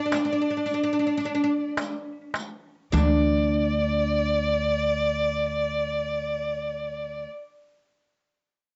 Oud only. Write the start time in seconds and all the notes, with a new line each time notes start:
0.06 D4
0.14 D4
0.25 D4
0.33 D4
0.42 D4
0.50 D4
0.57 D4
0.66 D4
0.74 D4
0.84 D4
0.93 D4
0.99 D4
1.07 D4
1.18 D4
1.26 D4
1.35 D4
1.44 D4
2.92 D4